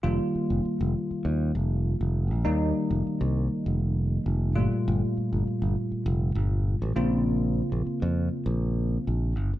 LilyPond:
<<
  \new Staff \with { instrumentName = "Tine electric piano" } { \time 4/4 \key f \mixolydian \tempo 4 = 100 <ees g bes f'>1 | <ees g bes ees'>2.~ <ees g bes ees'>8 <bes, g a f'>8~ | <bes, g a f'>2.~ <bes, g a f'>8 <des bes c' f'>8~ | <des bes c' f'>2.~ <des bes c' f'>8 r8 | }
  \new Staff \with { instrumentName = "Fingered electric bass" } { \clef bass \time 4/4 \key f \mixolydian f,,16 r8 f,,16 r16 f,,16 r8 ees,8 f,,8. f,,8 bes,,16 | ees,8 r16 f,,16 r16 c,8 r16 f,,4 f,,8 g,,16 r16 | g,,16 r8 g,,16 r16 g,,16 r8 f,,8 g,,8. a,,16 bes,,8~ | bes,,8. bes,,16 r16 f,8 r16 bes,,4 bes,,8 g,,16 r16 | }
>>